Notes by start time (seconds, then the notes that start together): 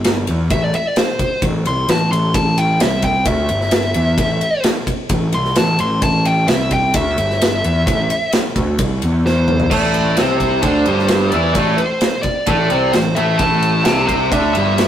Already playing: G1
0.04 snare, ride
0.27 E2, ride
0.50 A1 E5, kick, ride
0.64 D5
0.74 E5, ride
0.87 D5
0.96 C5, snare, ride
1.19 kick, ride
1.42 A1, kick, ride
1.66 C2 C6, ride
1.89 A1 A5, snare, ride
2.11 A1 C6, ride
2.34 A1 A5, kick, ride
2.58 G5, ride
2.80 C2 E5, snare, ride
3.02 G5, kick, ride
3.25 D2 E5, kick, ride
3.49 G1, ride
3.61 snare
3.71 snare, ride
3.94 E2, ride
4.18 A1, kick, ride
4.41 ride
4.64 snare, ride
4.87 kick, ride
5.09 A1, kick, ride
5.33 C2 C6, ride
5.45 snare
5.56 A1 A5, snare, ride
5.79 A1 C6, ride
6.02 A1 A5, kick, ride
6.25 G5, ride
6.48 C2 E5, snare, ride
6.71 G5, kick, ride
6.94 D2 E5, kick, ride
7.18 G1, ride
7.30 snare
7.42 snare, ride
7.64 E2, ride
7.87 A1, kick, ride
8.10 ride
8.33 snare, ride
8.56 D2, kick, ride
8.79 C2, kick, ride
9.02 E2, ride
9.26 C5, snare
9.48 mid tom
9.60 floor tom
9.71 A1 A2 A3 D5, kick, crash
9.94 ride
10.17 C2 C3 C4, snare, ride
10.25 C5
10.38 C5, kick, ride
10.62 D2 D3 D4 C5, kick, ride
10.85 G1 G2 G3, ride
10.99 snare
11.08 snare, ride
11.30 E2 E3 E4 D5, ride
11.54 A1 A2 A3 D5, kick, ride
11.78 C5, ride
12.01 snare, ride
12.22 D5, kick, ride
12.47 A1 A2 A3, kick, ride
12.70 C2 C3 C4, ride
12.92 A1 A2 C5, snare, ride
13.15 A1 A2 A3 E5, ride
13.38 A1 A2 A3 A5, kick, ride
13.63 ride
13.85 C2 C3 C4, snare, ride
14.07 C5, kick, ride
14.32 D2 D3 D4 E5, kick, ride
14.53 G1 G2 G3 E5, ride
14.78 snare, ride